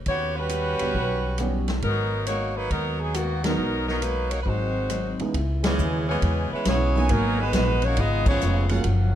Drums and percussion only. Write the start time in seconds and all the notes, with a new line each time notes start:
0.06 kick, ride
0.49 hi-hat pedal, ride
0.79 ride
0.94 kick
1.38 cross-stick, hi-hat pedal, ride
1.68 snare, ride
1.82 kick, ride
2.27 hi-hat pedal, ride
2.71 kick, ride
3.14 cross-stick, hi-hat pedal, ride
3.44 snare, ride
3.88 snare
4.02 hi-hat pedal, ride
4.31 ride
4.46 kick
4.90 cross-stick, hi-hat pedal, ride
5.20 ride
5.34 kick, ride
5.64 snare, ride
5.79 hi-hat pedal
6.22 kick, ride
6.65 kick, snare, hi-hat pedal, ride
7.09 kick, ride
7.53 kick, snare, hi-hat pedal, ride
7.82 ride
7.97 kick, ride
8.26 kick, crash
8.41 hi-hat pedal
8.69 ride
8.84 kick, ride